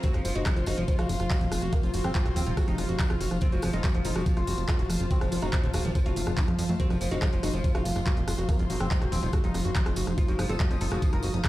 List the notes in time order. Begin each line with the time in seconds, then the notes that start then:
Already playing: F4 C5 F5 A#5
0.03 F3 C4 F4 F#4, kick, closed hi-hat, tambourine
0.13 F1 F3, cross-stick, closed hi-hat, tambourine
0.25 F1 F3 F4 C6, open hi-hat, tambourine
0.35 F1 D#4 F#4, closed hi-hat, tambourine
0.46 F3, kick, cross-stick, clap, closed hi-hat, tambourine
0.56 F1 F3 F4, closed hi-hat, tambourine
0.66 F1 D#4 F#4, cross-stick, open hi-hat, tambourine
0.77 F1 F3, closed hi-hat, tambourine
0.88 F3 F4, kick, closed hi-hat, tambourine
0.99 F1 F4 F#4, cross-stick, closed hi-hat, tambourine
1.09 F1 F3, open hi-hat, tambourine
1.20 F1 F4, cross-stick, closed hi-hat, tambourine
1.30 F#4, kick, clap, closed hi-hat, tambourine
1.40 D#1 F3, closed hi-hat, tambourine
1.52 F1 F4, cross-stick, open hi-hat, tambourine
1.62 F1 F#4, closed hi-hat, tambourine
1.72 F3 A#3, kick, cross-stick, closed hi-hat, tambourine
1.83 F1 C3 F4, closed hi-hat, tambourine
1.94 F1 C3 F#4, open hi-hat, tambourine
2.04 F1 F3 C4, cross-stick, closed hi-hat, tambourine
2.15 C3 F4, kick, clap, closed hi-hat, tambourine
2.25 D#1 C3 F#4, cross-stick, closed hi-hat, tambourine
2.36 D#1 F3 C4, open hi-hat, tambourine
2.46 D#1 C3 F4, closed hi-hat, tambourine
2.57 C3 F#4, kick, cross-stick, closed hi-hat, tambourine
2.68 F1 F3 D#4, closed hi-hat, tambourine
2.78 F1 F4, cross-stick, open hi-hat, tambourine
2.89 F1 F#4, closed hi-hat, tambourine
2.99 F3, kick, clap, closed hi-hat, tambourine
3.10 F1 F4, cross-stick, closed hi-hat, tambourine
3.21 F1 F#4, open hi-hat, tambourine
3.31 F1 F3, cross-stick, closed hi-hat, tambourine
3.41 C4 F4, kick, closed hi-hat, tambourine
3.52 F1 F3 F#4, closed hi-hat, tambourine
3.62 F1 F3, cross-stick, open hi-hat, tambourine
3.66 A5
3.73 F1 D#4 F4, closed hi-hat, tambourine
3.84 F3 F#4, kick, cross-stick, clap, closed hi-hat, tambourine
3.94 F1 F3, closed hi-hat, tambourine
4.05 F1 D#4 F4, open hi-hat, tambourine
4.16 F1 F3 F#4, cross-stick, tambourine
4.26 F3, kick, closed hi-hat, tambourine
4.37 F1 F4, cross-stick, closed hi-hat, tambourine
4.47 F1 F#4, open hi-hat, tambourine
4.58 F1 F3, closed hi-hat, tambourine
4.68 F4, kick, cross-stick, clap, closed hi-hat, tambourine
4.79 D#1 F#4, closed hi-hat, tambourine
4.90 F1 F3, cross-stick, open hi-hat, tambourine
5.00 F1 F4, closed hi-hat, tambourine
5.10 C4 F#4, kick, closed hi-hat, tambourine
5.21 F1 F3, cross-stick, closed hi-hat, tambourine
5.32 F1 F3 F4, open hi-hat, tambourine
5.42 F1 D#4 F#4, cross-stick, closed hi-hat, tambourine
5.53 F3, kick, clap, closed hi-hat, tambourine
5.63 D#1 F3 F4, closed hi-hat, tambourine
5.73 D#1 F4 F#4, cross-stick, open hi-hat, tambourine
5.85 D#1 F3, tambourine
5.95 F3 F4, kick, cross-stick, closed hi-hat, tambourine
6.06 F1 F4 F#4, closed hi-hat, tambourine
6.16 F1 A3, open hi-hat, tambourine
6.26 F1 F3, cross-stick, closed hi-hat, tambourine
6.37 F#4, kick, clap, closed hi-hat, tambourine
6.48 F2 F3, cross-stick, closed hi-hat, tambourine
6.59 F2 F3, open hi-hat, tambourine
6.69 F2 A3, closed hi-hat, tambourine
6.80 C4 D#4 F#4, kick, closed hi-hat, tambourine
6.90 F1 F3, cross-stick, closed hi-hat, tambourine
7.01 F1 F3 F4 C6, open hi-hat, tambourine
7.11 F1 D#4 F#4, closed hi-hat, tambourine
7.22 F3, kick, cross-stick, clap, closed hi-hat, tambourine
7.33 F1 F3 F4, closed hi-hat, tambourine
7.43 F1 D#4 F#4, cross-stick, open hi-hat, tambourine
7.53 F1 F3, closed hi-hat, tambourine
7.64 F3 F4, kick, closed hi-hat, tambourine
7.75 F1 F4 F#4, cross-stick, closed hi-hat, tambourine
7.85 F1 F3, open hi-hat, tambourine
7.96 F1 F4, cross-stick, closed hi-hat, tambourine
8.06 F#4, kick, clap, closed hi-hat, tambourine
8.17 D#1 F3, closed hi-hat, tambourine
8.28 F1 F4, cross-stick, open hi-hat, tambourine
8.38 F1 F#4, closed hi-hat, tambourine
8.49 F3 A#3, kick, cross-stick, closed hi-hat, tambourine
8.59 F1 C3 F4, closed hi-hat, tambourine
8.70 F1 C3 F#4, open hi-hat, tambourine
8.80 F1 F3 C4, cross-stick, closed hi-hat, tambourine
8.91 C3 F4, kick, clap, closed hi-hat, tambourine
9.01 D#1 C3 F#4, cross-stick, closed hi-hat, tambourine
9.12 D#1 F3 C4, open hi-hat, tambourine
9.23 D#1 C3 F4, closed hi-hat, tambourine
9.33 C3 F#4, kick, cross-stick, closed hi-hat, tambourine
9.44 F1 F3 D#4, closed hi-hat, tambourine
9.54 F1 F4, cross-stick, open hi-hat, tambourine
9.65 F1 F#4, closed hi-hat
9.76 F3, kick, clap, closed hi-hat, tambourine
9.86 F1 F4, cross-stick, closed hi-hat, tambourine
9.96 F1 F#4, open hi-hat, tambourine
10.07 F1 F3, cross-stick, closed hi-hat, tambourine
10.18 F4, kick, closed hi-hat, tambourine
10.28 F1 F3 F#4, closed hi-hat, tambourine
10.39 F1 F3 D#6, cross-stick, open hi-hat, tambourine
10.49 F1 F4 A4, closed hi-hat, tambourine
10.60 F3 F#4, kick, cross-stick, clap, closed hi-hat, tambourine
10.71 F1 F3, closed hi-hat, tambourine
10.81 F1 F4 A4, open hi-hat, tambourine
10.91 F1 F3 F#4, cross-stick, closed hi-hat, tambourine
11.02 F3, kick, closed hi-hat, tambourine
11.13 F1 F4 A#4, cross-stick, closed hi-hat, tambourine
11.23 F1 F#4, open hi-hat, tambourine
11.34 F1 F3, closed hi-hat, tambourine
11.44 F4, kick, cross-stick, clap, closed hi-hat, tambourine